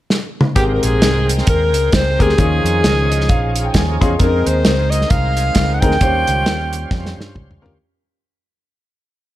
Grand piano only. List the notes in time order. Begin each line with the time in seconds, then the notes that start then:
0.56 G#2 C4 G4 G#4 A#4
2.19 C4 G4 G#4 A#4
2.37 D#3 C#4 D#4 F4 G#4
3.09 D#5
3.29 F5
3.65 G5
3.74 G#5
4.01 C#4 D#4 F4 G#4 C6
4.19 C4 D4 G#4 A#4
4.24 D#4
5.82 C4 D#4 G#4 A#4
6.02 D#3 C#4 F4 G4 C5
7.62 C#4 F4 G4 A#4